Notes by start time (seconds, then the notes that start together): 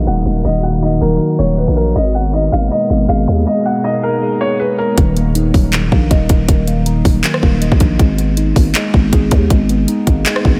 Already playing: D#3 F#3 A#3 D#4 F#4 A#4
0.07 D#1 D#5 F#5, closed hi-hat
0.26 D#1, closed hi-hat
0.45 D#1 D#3 D#5, closed hi-hat
0.63 A#3 F#5, closed hi-hat
0.82 D#4 D#5, closed hi-hat
1.01 D#1 F#3 A#4, closed hi-hat
1.20 D#3, closed hi-hat
1.39 D#1 A#3 C#5
1.58 B4 D#5, closed hi-hat
1.68 A#1
1.76 A#4, closed hi-hat
1.96 G#1 B2 G#3 G#4 D#5, closed hi-hat
2.14 B3 F#5, closed hi-hat
2.33 D#4 D#5, closed hi-hat
2.52 G#1 A#3 F5, closed hi-hat
2.71 G#3 D#5, closed hi-hat
2.90 G#1 B3
3.09 G#1 G#4 F5, closed hi-hat
3.27 D#2, closed hi-hat
3.46 G#3 D#5
3.66 B3 F#5
3.84 D#4 D#5
4.03 A#3 A#4
4.22 G#3
4.41 B3 C#5
4.59 G#4 B4
4.78 A#4
4.97 D#1 D#3, kick, closed hi-hat
5.17 A#3, closed hi-hat
5.35 D#4, closed hi-hat
5.54 D#1 F#3, kick, open hi-hat
5.73 D#3, clap, closed hi-hat
5.92 A#1 A#3, kick
6.11 D#1 D#5, kick, closed hi-hat
6.29 D#1, kick, closed hi-hat
6.48 D#1 D#3, kick, closed hi-hat
6.67 A#3, closed hi-hat
6.86 D#4, closed hi-hat
7.05 D#1 F#3, kick, open hi-hat
7.24 D#3, clap, closed hi-hat
7.34 cross-stick
7.43 D#1 A#3, kick
7.62 D#5, closed hi-hat
7.72 A#1, kick
7.80 kick, closed hi-hat
7.99 G#1 G#3, kick, closed hi-hat
8.18 B3, closed hi-hat
8.37 D#4, closed hi-hat
8.56 G#1 A#3, kick, open hi-hat
8.75 G#3, clap, closed hi-hat
8.94 G#1 B3, kick
9.13 G#1 G#4, kick, closed hi-hat
9.31 D#2, kick, closed hi-hat
9.50 G#1 G#3, kick, closed hi-hat
9.69 B3, closed hi-hat
9.88 D#4, closed hi-hat
10.07 G#1 A#3, kick, closed hi-hat
10.26 G#3, clap, closed hi-hat
10.36 cross-stick
10.45 G#1 B3, kick